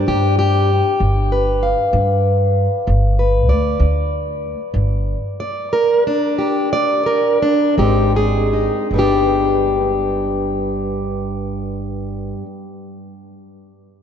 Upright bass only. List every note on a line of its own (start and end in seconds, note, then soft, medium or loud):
0.08 0.80 G2 medium
1.00 1.73 G1 medium
1.93 2.66 G2 loud
2.88 3.49 G1 medium
3.49 3.73 D2 medium
3.80 4.53 D2 medium
4.74 5.14 G1 medium
7.78 8.66 G#1 medium
8.91 12.31 G1 medium